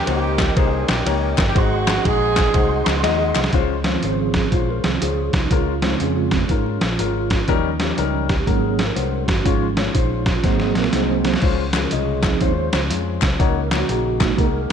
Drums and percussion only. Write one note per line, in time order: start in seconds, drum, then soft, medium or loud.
0.07 ride medium
0.38 kick medium
0.38 snare loud
0.38 clap medium
0.38 ride medium
0.57 kick loud
0.57 ride medium
0.88 snare loud
0.88 clap medium
0.88 ride medium
1.06 ride loud
1.38 kick loud
1.38 snare loud
1.38 clap loud
1.38 ride medium
1.56 kick loud
1.56 ride medium
1.87 snare loud
1.87 clap medium
1.87 ride medium
2.05 kick medium
2.05 ride medium
2.36 kick medium
2.36 snare medium
2.36 clap medium
2.36 ride medium
2.54 kick loud
2.54 ride medium
2.86 snare loud
2.86 clap medium
2.86 ride medium
3.04 snare medium
3.04 ride loud
3.35 snare loud
3.35 clap medium
3.35 ride medium
3.44 snare medium
3.53 kick loud
3.53 closed hi-hat medium
3.84 snare loud
3.84 closed hi-hat medium
4.03 closed hi-hat medium
4.34 kick medium
4.34 snare medium
4.34 closed hi-hat medium
4.52 kick medium
4.52 closed hi-hat medium
4.84 snare loud
4.84 closed hi-hat medium
5.02 closed hi-hat loud
5.33 kick medium
5.33 snare loud
5.33 closed hi-hat medium
5.51 kick loud
5.51 closed hi-hat medium
5.82 snare loud
5.82 closed hi-hat medium
6.00 closed hi-hat medium
6.31 kick medium
6.31 snare loud
6.31 closed hi-hat medium
6.49 kick medium
6.49 closed hi-hat medium
6.81 snare loud
6.81 closed hi-hat medium
6.99 closed hi-hat loud
7.30 kick medium
7.30 snare loud
7.30 closed hi-hat medium
7.48 kick loud
7.48 closed hi-hat medium
7.80 snare loud
7.80 closed hi-hat medium
7.98 closed hi-hat medium
8.29 kick medium
8.29 snare medium
8.29 closed hi-hat medium
8.47 kick medium
8.47 closed hi-hat medium
8.79 snare loud
8.79 closed hi-hat medium
8.96 closed hi-hat loud
9.28 kick medium
9.28 snare loud
9.28 closed hi-hat medium
9.46 kick loud
9.46 closed hi-hat medium
9.77 snare loud
9.77 closed hi-hat medium
9.95 kick medium
9.95 closed hi-hat medium
10.26 kick medium
10.26 snare loud
10.26 closed hi-hat medium
10.44 kick loud
10.44 snare medium
10.44 closed hi-hat medium
10.60 snare medium
10.75 snare medium
10.75 closed hi-hat medium
10.84 snare medium
10.93 snare medium
10.93 closed hi-hat loud
11.25 snare loud
11.25 closed hi-hat medium
11.34 snare medium
11.42 kick loud
11.42 crash medium
11.73 snare loud
11.73 clap medium
11.73 closed hi-hat medium
11.91 closed hi-hat medium
12.23 kick medium
12.23 snare medium
12.23 clap medium
12.23 closed hi-hat medium
12.41 kick medium
12.41 closed hi-hat medium
12.73 snare loud
12.73 clap medium
12.73 closed hi-hat medium
12.90 closed hi-hat loud
13.22 kick medium
13.22 snare loud
13.22 clap medium
13.22 closed hi-hat medium
13.40 kick loud
13.40 closed hi-hat medium
13.71 snare loud
13.71 clap medium
13.71 closed hi-hat medium
13.89 closed hi-hat medium
14.20 kick medium
14.20 snare loud
14.20 clap medium
14.20 closed hi-hat medium
14.38 kick medium
14.38 closed hi-hat medium